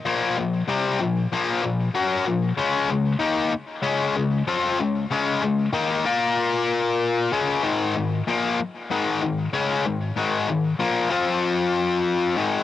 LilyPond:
\new Staff \with { instrumentName = "Distorted electric guitar" } { \clef bass \time 4/4 \key bes \dorian \tempo 4 = 95 <bes, f bes>8 <bes, f>8 <c g c'>8 <bes, f>8 <bes, f bes>8 <bes, f>8 <ges des' ges'>8 <bes, f>8 | <des aes des'>8 <des aes>8 <ees bes ees'>8 r8 <des aes des'>8 <des aes>8 <f c' f'>8 <des aes>8 | <des aes des'>8 <des aes>8 <ees bes ees'>8 <bes f' bes'>2 <des aes des'>8 | <aes, ees aes>8 <aes, ees>8 <bes, f bes>8 r8 <aes, ees aes>8 <aes, ees>8 <des aes des'>8 <aes, ees>8 |
<aes, ees aes>8 <aes, ees>8 <bes, f bes>8 <f c' f'>2 <aes, ees aes>8 | }